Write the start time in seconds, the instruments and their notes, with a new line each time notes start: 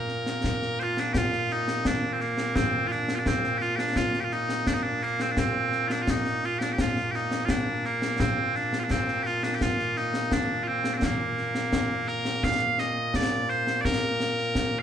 Already playing: bagpipes A#2 A#3 A#4
0.09 snare
0.26 snare
0.44 concert bass drum, snare
0.62 snare
0.79 bagpipes F4 C5, snare
0.97 bagpipes D4, snare
1.13 bagpipes G4, concert bass drum, snare
1.18 bagpipes F4
1.32 snare
1.50 bagpipes D#4, snare
1.68 snare
1.85 bagpipes D4, concert bass drum, snare
2.13 bagpipes C4
2.20 bagpipes A#3, snare
2.38 snare
2.56 bagpipes C4, concert bass drum, snare
2.87 bagpipes F4, snare
2.92 bagpipes D4
3.08 snare
3.15 bagpipes D4 F4
3.26 bagpipes C4, concert bass drum, snare
3.44 snare
3.58 bagpipes F4 G4, snare
3.76 bagpipes D4 G4, snare
3.96 bagpipes F4, concert bass drum, snare
4.14 snare
4.20 bagpipes G4
4.24 bagpipes F4
4.31 bagpipes D#4, snare
4.49 snare
4.67 bagpipes D4, concert bass drum, snare
4.74 bagpipes D#4
4.83 bagpipes D4
5.02 bagpipes A#3, snare
5.20 bagpipes C4, snare
5.31 bagpipes D4
5.37 bagpipes C4, concert bass drum, snare
5.72 snare
5.88 bagpipes D4 F4, snare
6.02 bagpipes F4
6.07 bagpipes D#4, concert bass drum, snare
6.25 snare
6.43 bagpipes F4, snare
6.59 bagpipes G4, snare
6.63 bagpipes D4
6.73 bagpipes G4
6.78 bagpipes F4, concert bass drum, snare
6.96 snare
7.11 bagpipes G4, snare
7.15 bagpipes D#4
7.31 snare
7.45 bagpipes F4, concert bass drum, snare
7.50 bagpipes D4
7.85 bagpipes A#3, snare
8.02 snare
8.20 bagpipes C4, concert bass drum, snare
8.55 bagpipes D4, snare
8.73 snare
8.80 bagpipes F4
8.84 bagpipes D4
8.90 bagpipes C4, concert bass drum, snare
9.08 snare
9.23 bagpipes F4 G4, snare
9.43 bagpipes D4, snare
9.55 bagpipes G4
9.61 bagpipes F4, concert bass drum, snare
9.79 snare
9.96 bagpipes D#4, snare
10.14 snare
10.32 bagpipes D4, concert bass drum, snare
10.63 bagpipes F4
10.68 bagpipes C4
10.84 snare
10.93 bagpipes C4 D4
11.02 bagpipes A#3, concert bass drum, snare
11.38 snare
11.55 snare
11.73 concert bass drum, snare
12.08 bagpipes A#4, snare
12.25 snare
12.43 bagpipes F5, concert bass drum, snare
12.78 bagpipes D#5, snare
13.14 bagpipes D5, concert bass drum, snare
13.49 bagpipes C5, snare
13.67 snare
13.81 bagpipes A#4 D5, concert bass drum, snare
14.20 snare
14.38 snare
14.55 concert bass drum, snare
14.79 bagpipes F5